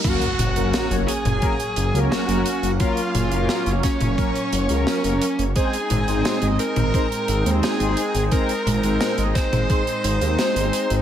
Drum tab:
CC |x---------------|----------------|----------------|----------------|
HH |xxxxxxxxxxxxxxxx|xxxxxxxxxxxxxxxx|xxxxxxxxxxxxxxxx|xxxxxxxxxxxxxxxx|
SD |----o-------o---|----o-o-----o---|----o-------o---|----o-o-----o---|
T2 |--o----o--------|--o----o--------|--o----o--------|--o----o--------|
BD |o-------o-------|o-----o-o-------|o-------o-------|o-----o-o-------|